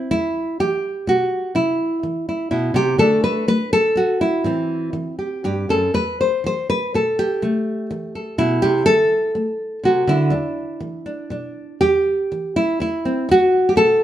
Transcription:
0.11 0.56 E2 medium
0.11 0.60 E4 medium
0.60 1.04 E3 soft
0.60 1.55 G4 medium
1.07 1.51 B2 medium
1.07 1.56 F#4 medium
1.55 1.98 C3 medium
1.55 2.28 E4 medium
2.03 2.47 E3 soft
2.29 2.50 E4 soft
2.51 2.74 B2 medium
2.51 2.75 E4 medium
2.74 2.98 C3 medium
2.74 2.99 G4 medium
2.98 3.43 D3 medium
2.98 3.47 A3 soft
2.98 4.43 D4 medium
2.98 3.23 A4 loud
3.24 3.47 B4 medium
3.48 3.92 A3 medium
3.48 3.72 B4 loud
3.73 4.21 A4 loud
3.95 4.40 A2 medium
3.95 4.46 F#4 medium
4.21 5.18 E4 medium
4.44 4.89 A2 medium
4.44 4.93 E3 soft
4.44 5.92 C4 soft
4.93 5.39 E3 soft
5.19 5.44 G4 soft
5.44 5.69 G2 medium
5.44 5.70 G4 medium
5.69 5.94 F#2 medium
5.69 5.94 A4 medium
5.94 6.40 E2 medium
5.94 6.20 B4 medium
6.21 6.45 C5 medium
6.44 6.89 E3 soft
6.44 6.69 C5 medium
6.70 6.95 B4 loud
6.94 7.39 B2 medium
6.94 7.44 A4 medium
7.19 8.61 G4 medium
7.42 7.86 C3 medium
7.42 9.34 A3 soft
7.91 8.34 E3 medium
8.15 8.38 A4 soft
8.38 8.63 B2 medium
8.38 8.85 E4 medium
8.62 8.87 C3 medium
8.62 8.87 G4 loud
8.86 9.30 D3 medium
8.86 10.07 A4 loud
9.35 9.79 A3 medium
9.84 10.07 C3 medium
9.84 10.33 F#4 medium
10.07 10.32 D3 medium
10.07 11.80 E4 medium
10.30 10.75 E2 medium
10.30 11.05 D4 soft
10.80 11.26 E3 medium
11.06 11.30 D4 soft
11.30 11.76 B2 medium
11.30 11.78 D4 soft
11.81 12.26 E2 medium
11.81 12.55 G4 medium
12.32 12.76 E3 soft
12.56 12.80 E4 medium
12.80 13.24 E2 medium
12.80 13.29 E4 medium
13.05 13.26 C4 soft
13.29 13.72 E2 medium
13.29 14.04 F#4 loud
13.69 13.76 G4 medium
13.76 14.04 B2 medium
13.76 14.04 A4 loud

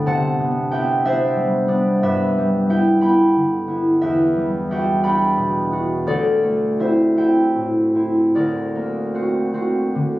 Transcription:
0.00 0.39 B3 soft
0.00 0.71 D4 medium
0.00 0.91 B4 medium
0.00 1.05 C5 medium
0.00 0.90 D5 medium
0.00 0.72 E5 medium
0.00 0.70 G5 medium
0.00 3.00 B5 medium
0.06 2.07 C3 medium
0.06 2.07 F#5 medium
0.06 1.18 A5 medium
0.40 0.70 B3 soft
0.71 1.04 B3 soft
0.71 1.05 D4 medium
0.71 1.04 E5 medium
0.71 2.69 G5 medium
1.05 1.67 B3 medium
1.05 1.67 D4 medium
1.05 2.07 C5 medium
1.05 2.02 E5 medium
1.36 2.37 G3 medium
1.68 2.68 B3 medium
1.68 4.70 D4 medium
2.03 4.04 G2 medium
2.03 4.02 B4 medium
2.03 2.69 E5 loud
2.38 4.35 G3 medium
2.69 3.00 B3 medium
2.69 3.00 E4 medium
2.69 4.00 E5 medium
2.69 3.01 G5 medium
3.01 3.67 B3 medium
3.01 3.68 E4 medium
3.01 4.70 G5 medium
3.01 5.02 B5 loud
3.36 4.05 D3 soft
3.68 6.11 B3 medium
3.68 6.79 E4 medium
4.02 6.11 E2 medium
4.02 6.11 B4 medium
4.02 4.71 E5 loud
4.36 8.26 G3 medium
4.71 5.03 D4 medium
4.71 5.03 F#4 soft
4.71 6.79 E5 medium
4.71 5.04 G5 medium
5.04 5.71 D4 medium
5.04 5.71 F#4 medium
5.04 7.16 G5 medium
5.04 6.10 B5 loud
5.37 6.10 B2 soft
5.72 9.62 D4 soft
5.72 6.11 F#4 medium
6.07 8.34 D2 medium
6.07 8.38 A4 medium
6.07 8.34 D5 medium
6.44 8.38 A3 soft
6.79 7.16 C4 soft
6.79 7.16 E4 soft
6.79 10.19 C5 medium
6.79 7.16 E5 medium
7.16 7.94 C4 soft
7.16 7.94 E4 medium
7.16 8.39 E5 medium
7.16 8.39 G5 medium
7.55 8.38 A2 soft
7.95 9.13 C4 soft
7.95 8.38 E4 medium
8.35 10.19 D2 medium
8.35 10.19 A#4 medium
8.35 10.19 D5 medium
8.75 10.19 A#3 soft
9.14 9.53 C4 soft
9.14 9.53 F#4 soft
9.54 10.19 C4 soft
9.54 10.19 F#4 soft
9.95 10.19 D3 soft

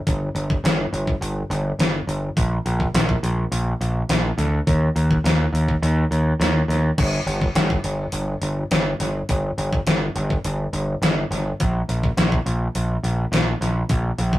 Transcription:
0.07 0.28 G1 loud
0.07 kick loud
0.07 open hi-hat medium
0.35 0.56 G1 medium
0.35 open hi-hat medium
0.50 kick medium
0.64 0.85 G1 loud
0.64 snare loud
0.64 open hi-hat medium
0.93 1.14 G1 loud
0.93 open hi-hat medium
1.07 kick medium
1.21 1.42 G1 medium
1.21 open hi-hat medium
1.50 1.71 G1 loud
1.50 open hi-hat medium
1.79 2.00 G1 medium
1.79 snare loud
1.79 open hi-hat medium
2.07 2.28 G1 medium
2.07 open hi-hat medium
2.37 2.58 A#1 loud
2.37 kick loud
2.37 open hi-hat medium
2.66 2.86 A#1 medium
2.66 open hi-hat medium
2.80 kick medium
2.94 3.15 A#1 loud
2.94 snare loud
2.94 open hi-hat loud
3.09 kick medium
3.23 3.44 A#1 loud
3.23 open hi-hat medium
3.52 3.73 A#1 medium
3.52 open hi-hat medium
3.81 4.02 A#1 medium
3.81 open hi-hat medium
4.09 4.30 A#1 loud
4.09 snare loud
4.09 open hi-hat medium
4.38 4.59 D2 medium
4.38 snare soft
4.38 open hi-hat medium
4.67 4.88 D#2 loud
4.67 kick loud
4.67 open hi-hat medium
4.96 5.17 D#2 medium
4.96 open hi-hat medium
5.11 kick medium
5.24 5.45 D#2 loud
5.24 snare loud
5.24 open hi-hat medium
5.53 5.74 D#2 medium
5.53 open hi-hat medium
5.68 kick medium
5.82 6.03 D#2 loud
5.82 open hi-hat medium
6.11 6.32 D#2 medium
6.11 open hi-hat medium
6.40 6.61 D#2 medium
6.40 snare loud
6.40 open hi-hat medium
6.68 6.90 D#2 medium
6.68 snare soft
6.68 open hi-hat medium
6.98 7.19 G1 loud
6.98 kick loud
6.98 crash medium
7.26 7.48 G1 loud
7.26 open hi-hat medium
7.41 kick loud
7.55 7.77 G1 loud
7.55 snare loud
7.55 open hi-hat medium
7.70 kick medium
7.84 8.05 G1 loud
7.84 open hi-hat medium
8.12 8.34 G1 medium
8.12 open hi-hat medium
8.42 8.63 G1 medium
8.42 open hi-hat medium
8.71 8.92 G1 medium
8.71 snare loud
8.71 open hi-hat medium
9.00 9.21 G1 loud
9.00 snare soft
9.00 open hi-hat medium
9.29 9.50 G1 loud
9.29 kick loud
9.29 open hi-hat medium
9.58 9.79 G1 medium
9.58 open hi-hat medium
9.73 kick medium
9.87 10.08 G1 loud
9.87 snare loud
9.87 open hi-hat medium
10.16 10.37 G1 loud
10.16 open hi-hat medium
10.30 kick loud
10.44 10.66 G1 loud
10.44 open hi-hat medium
10.73 10.94 G1 medium
10.73 open hi-hat medium
11.02 11.23 G1 loud
11.02 snare loud
11.02 open hi-hat medium
11.31 11.52 G1 loud
11.31 snare soft
11.31 open hi-hat medium
11.60 11.81 A#1 loud
11.60 kick loud
11.60 open hi-hat medium
11.89 12.10 A#1 medium
11.89 open hi-hat medium
12.03 kick medium
12.17 12.38 A#1 loud
12.17 snare loud
12.17 open hi-hat medium
12.32 kick medium
12.46 12.67 A#1 loud
12.46 open hi-hat medium
12.75 12.96 A#1 medium
12.75 open hi-hat medium
13.03 13.24 A#1 medium
13.03 open hi-hat medium
13.32 13.53 A#1 loud
13.32 snare loud
13.32 open hi-hat medium
13.61 13.82 A#1 loud
13.61 snare soft
13.61 open hi-hat medium
13.89 14.10 A#1 loud
13.89 kick loud
13.89 open hi-hat medium
14.18 14.39 A#1 medium
14.18 open hi-hat medium
14.33 kick medium

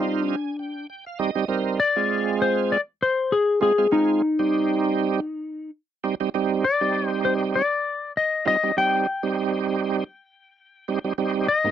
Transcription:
0.00 0.36 G3 medium
0.00 0.36 C4 medium
0.00 0.20 D#4 medium
0.00 0.36 D#4 medium
0.00 0.36 F4 medium
0.20 0.85 D4 medium
0.28 0.57 G#5 medium
0.59 0.87 G5 medium
0.90 1.05 G5 medium
1.06 1.19 F5 medium
1.19 1.31 G3 medium
1.19 1.31 C4 medium
1.19 1.31 D#4 medium
1.19 1.31 G4 medium
1.19 1.47 D#5 medium
1.35 1.45 G3 medium
1.35 1.45 C4 medium
1.35 1.45 D#4 medium
1.35 1.45 G4 medium
1.48 1.79 G3 medium
1.48 1.79 C4 medium
1.48 1.79 D#4 medium
1.48 1.80 A#4 medium
1.48 1.77 C5 medium
1.80 2.36 D5 loud
1.96 2.78 G#3 medium
1.96 2.78 C4 medium
1.96 2.78 F4 medium
1.96 2.78 G#4 medium
2.42 2.72 C5 medium
2.72 2.80 D5 medium
3.02 3.33 C5 medium
3.32 3.60 G#4 medium
3.61 3.73 G#3 medium
3.61 3.73 C4 medium
3.61 3.73 F4 medium
3.61 3.73 G#4 medium
3.61 3.90 G#4 medium
3.78 3.88 G#3 medium
3.78 3.87 C4 medium
3.78 3.87 F4 medium
3.78 3.88 G#4 medium
3.92 4.22 G#3 medium
3.92 4.22 C4 medium
3.92 5.70 D#4 medium
3.92 4.22 F4 medium
3.92 4.22 G#4 medium
4.39 5.20 G3 medium
4.39 5.20 C4 medium
4.39 5.20 D#4 medium
4.39 5.20 G4 medium
6.04 6.15 G3 medium
6.04 6.15 C4 medium
6.04 6.15 D#4 medium
6.04 6.15 G4 medium
6.20 6.30 G3 medium
6.20 6.30 C4 medium
6.20 6.29 D#4 medium
6.20 6.30 G4 medium
6.34 6.65 G3 medium
6.34 6.65 C4 medium
6.34 6.65 D#4 medium
6.34 6.65 G4 medium
6.64 7.07 D5 medium
6.81 7.62 G3 medium
6.81 7.62 C4 medium
6.81 7.62 D#4 medium
6.81 7.62 G4 medium
7.07 7.21 C5 medium
7.25 7.33 C5 medium
7.56 8.12 D5 medium
8.17 8.46 D#5 medium
8.45 8.57 G3 medium
8.45 8.57 C4 medium
8.45 8.57 D#4 medium
8.45 8.57 F4 medium
8.45 8.75 D#5 medium
8.63 8.72 G3 medium
8.63 8.72 C4 medium
8.63 8.72 D#4 medium
8.63 8.72 G4 medium
8.77 9.07 G3 medium
8.77 9.07 C4 medium
8.77 9.07 D#4 medium
8.77 9.07 G4 medium
8.77 11.14 G5 medium
9.23 10.04 G3 medium
9.23 10.04 C4 medium
9.23 10.04 D#4 medium
9.23 10.04 G4 medium
10.88 10.99 G3 medium
10.88 10.99 C4 medium
10.88 10.99 D#4 medium
10.88 10.99 G4 medium
11.04 11.13 G3 medium
11.04 11.13 C4 medium
11.04 11.13 D#4 medium
11.04 11.13 G4 medium
11.18 11.48 G3 medium
11.18 11.48 C4 medium
11.18 11.48 D#4 medium
11.18 11.48 G4 medium
11.48 11.71 D#5 loud
11.64 11.71 G#2 medium
11.64 11.71 A#3 medium
11.64 11.71 C4 medium
11.64 11.71 D#4 medium
11.64 11.71 G4 medium

